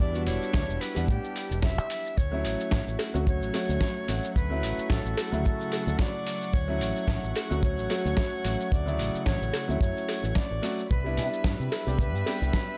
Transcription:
Already playing: G3 B3 D4 E4 G4
0.00 E2 D5, kick, shaker
0.13 G3 B3 D4 F#4, shaker
0.26 E1 C#5, open hi-hat, shaker
0.42 muted fingered electric bass stroke, shaker
0.53 D2, kick, snare, shaker
0.69 E1, shaker
0.81 B4, open hi-hat, shaker
0.95 E2 G3 B3 D4 F#5, open hi-hat, shaker
1.08 A2 G4, kick, shaker
1.24 shaker
1.36 open hi-hat, shaker
1.51 E1, shaker
1.62 E5, kick, snare, shaker
1.78 B1, shaker
1.90 open hi-hat, shaker
2.06 shaker
2.17 D2 F#3 C#5 F#5 C#6, kick, shaker
2.31 F#3 A3 C#4 E4
2.45 A1, open hi-hat, shaker
2.60 shaker
2.71 A1, kick, snare, shaker
2.87 A1, shaker
2.99 open hi-hat, cowbell, shaker
3.14 D2 F#3 A3 C#4 F#4, shaker
3.27 C#5, kick, shaker
3.42 A1, shaker
3.54 F#3 A3 C#4 F#4, open hi-hat, cowbell, shaker
3.69 D2, shaker
3.81 kick, snare, shaker
4.08 A1 F#3 A3 C#4 F#4, open hi-hat, shaker
4.24 shaker
4.35 D2 B4, kick, shaker
4.50 F#3 A3 C#4 E4
4.63 A1, open hi-hat, shaker
4.78 muted fingered electric bass stroke, shaker
4.90 A1 A4, kick, snare, shaker
5.05 A1, shaker
5.17 open hi-hat, cowbell, shaker
5.32 D2 C#3 F#3 A3 E4, shaker
5.44 A4, kick, shaker
5.60 shaker
5.72 open hi-hat, cowbell, shaker
5.87 D2, shaker
5.98 D5, kick, snare, shaker
6.27 open hi-hat, shaker
6.42 shaker
6.53 D2 C#5, kick, shaker
6.68 F#3 A3 C#4 E4
6.81 A1, open hi-hat, shaker
6.97 shaker
7.08 A1, kick, snare, shaker
7.23 A1, shaker
7.36 open hi-hat, cowbell, shaker
7.50 D2 F#3 A3 C#4 F#4, shaker
7.63 C#5, kick, shaker
7.78 A1, shaker
7.90 F#3 A3 C#4 F#4, open hi-hat, cowbell, shaker
8.05 D2, shaker
8.17 kick, snare, shaker
8.44 A1 F#3 A3 C#4 F#4, open hi-hat, shaker
8.60 shaker
8.72 D2 D5, kick, shaker
8.86 C#3 F#3 A3 E4, shaker
8.99 A1, open hi-hat, shaker
9.15 muted fingered electric bass stroke, shaker
9.26 A1 C#5, kick, snare, shaker
9.42 A1, shaker
9.53 open hi-hat, cowbell, shaker
9.68 D2 F#3 A3 C#4 E4, shaker
9.81 F#2 C#5, kick, shaker
9.97 shaker
10.09 open hi-hat, cowbell, shaker
10.23 A1, shaker
10.35 D5, kick, snare, shaker
10.51 A1
10.62 F#3 A3 C#4 F#4, open hi-hat, shaker
10.79 shaker
10.90 C2 B4 E5, kick, shaker
11.04 G3 B3 D4 E4
11.17 C3, open hi-hat, shaker
11.33 shaker
11.44 G2, kick, snare, shaker
11.60 C3, shaker
11.72 open hi-hat, cowbell, shaker
11.87 C2 G3 B3 D4 G4, shaker
11.99 B4, kick, shaker
12.14 G2, shaker
12.26 G3 B3 D4 G4, open hi-hat, cowbell, shaker
12.42 C2, shaker
12.53 kick, snare, shaker

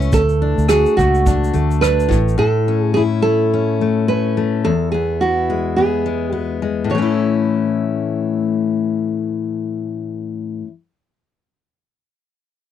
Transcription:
Already playing: C#2 A3 C#4 E4
0.02 shaker
0.12 D2 A4, kick, shaker
0.29 shaker
0.42 D4
0.58 D2, shaker
0.69 F#4 G#4, cross-stick, shaker
0.86 shaker
0.97 C#2 A3 F#4, kick, shaker
1.15 shaker
1.26 D4, kick, shaker
1.44 shaker
1.53 D2 A3, shaker
1.71 shaker
1.81 D4 B4, cross-stick, shaker
2.00 shaker
2.09 A1 A2, kick, shaker
2.28 shaker
2.38 A2 A4
2.68 C#4
2.81 G#4
2.94 E4 G#4
3.22 A3 A4
3.53 C#4
3.81 A3
4.08 C#4 B4
4.37 A3
4.64 E2 A4
4.92 B3 G#4
5.21 E4 F#4
5.50 G#3
5.76 B3 G#4
6.06 G#3
6.32 B3 F#4
6.62 G#3
6.84 A2
6.90 E3 C#5
6.95 A3 C#4
7.02 E4

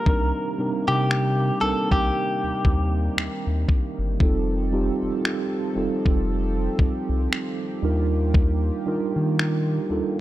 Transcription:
Already playing: G3 A#4
0.06 C2 C3 D#3 G3 A#3 C4 D4 D#4 A#4, kick
0.58 C3 G3 C4 D4 D#4 A#4
0.88 C3 G4
1.11 finger snap
1.61 C2 G3 C4 D4 D#4 A4 A#4
1.91 C2 G4, kick
2.44 D#2
2.65 D#2, kick
3.17 D#2, finger snap
3.47 D#2
3.69 kick
3.99 G1
4.20 F1 F3 G3 C4 D#4 F4 G4 A4, kick
4.72 G3 C4 D#4 F4 G4
5.02 F1
5.25 finger snap
5.75 F1 G3 C4 D#4 F4 A4
6.06 F1, kick
6.79 C2, kick
7.09 C2
7.33 finger snap
7.82 D#2 D#3 G3 A#3 D4 D#4 F4 A#4
8.34 kick
8.85 D#3 G3 D4 D#4 F4 A#4
9.16 D#3
9.39 finger snap
9.89 D#2 G3 D4 D#4 F4 A4

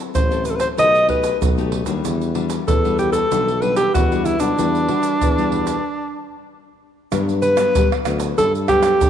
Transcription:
Already playing: F#3 C4 E4 A4
0.14 A1 F#3 C5, pandeiro, shaker, surdo
0.31 C4 E4 A4, pandeiro, shaker
0.45 B4, pandeiro, shaker
0.50 A4
0.56 B4
0.60 C5, pandeiro, shaker
0.77 B1 B2 A3 D#4 G4 D#5, pandeiro, shaker, surdo
0.95 pandeiro, shaker
1.08 A3 D#4 G4 B4, pandeiro, surdo
1.24 pandeiro, shaker
1.41 B1 F#3, pandeiro, shaker, surdo
1.57 A3 D#4 G4, pandeiro, shaker
1.72 pandeiro
1.86 D#2 G3 D4 F#4, pandeiro, shaker
2.04 E2 E3, pandeiro, shaker, surdo
2.21 pandeiro, shaker
2.35 G3 D4 F#4, pandeiro
2.50 pandeiro, shaker
2.67 E2 B2 A4, pandeiro, shaker, surdo
2.84 G3 D4 F#4, pandeiro, shaker
2.99 G4, pandeiro, shaker
3.12 A4, pandeiro, shaker
3.31 B1 E3 G3 D4 F#4, pandeiro, shaker, surdo
3.48 pandeiro, shaker
3.62 G3 D4 F#4 B4, pandeiro
3.76 G4, pandeiro, shaker
3.94 E2 B2 F#4, pandeiro, shaker, surdo
4.12 G3 D4 F#4, pandeiro, shaker
4.25 E4, pandeiro, shaker
4.39 B1 G3 D4 F#4, pandeiro, shaker
4.58 E2 E3 G3 D4 F#4, pandeiro, shaker, surdo
4.75 pandeiro, shaker
4.88 G3 D4 F#4, pandeiro
5.03 pandeiro, shaker
5.21 E2 B2, pandeiro, shaker, surdo
5.38 G3 D4 F#4, pandeiro, shaker
5.52 pandeiro
5.67 pandeiro, shaker
7.11 G2 F#3 B3 D4, pandeiro, tamborim, shaker, surdo
7.29 pandeiro, shaker
7.42 B4, pandeiro, shaker
7.56 F#3 B3 D4, pandeiro, tamborim, shaker
7.75 D3 G3, pandeiro, shaker, surdo
7.92 pandeiro, tamborim, shaker
8.05 D2 F#3 B3 D4, pandeiro, tamborim, shaker
8.20 pandeiro, shaker
8.38 G2 A4, pandeiro, shaker, surdo
8.55 pandeiro, shaker
8.68 F#3 B3 D4 G4, pandeiro, tamborim, shaker, surdo
8.83 pandeiro, tamborim, shaker
9.01 G2 D3, pandeiro, shaker, surdo

